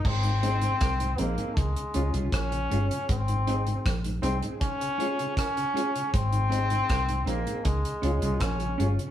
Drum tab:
CC |x---------------|----------------|----------------|
HH |-xxxxxxxxxxxxxxx|xxxxxxxxxxxxxxxx|xxxxxxxxxxxxxxxx|
SD |----r-------r---|----r-------r---|----r-------r---|
BD |o---o---o---o---|o---o---o---o---|o---o---o---o---|